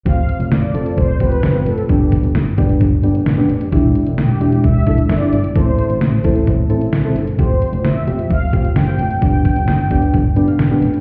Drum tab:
HH |x-xxx-xxx-xxx-xx|x-xxx-xxx-xxx-xx|x-xxx-xxx-xxx-xx|x-xxx-xxx-xxx-xx|
SD |----o-------o---|----o-------o---|----o-------o---|----o-------o---|
BD |o-------o-o-----|o-o---o-o-------|o-------o-o-----|o-----o-o-------|

HH |x-xxx-xxx-xxx-xx|x-xxx-xxx-xxx-xx|
SD |----o-------o---|----o-------o---|
BD |o-------o-o-----|o-o---o-o-------|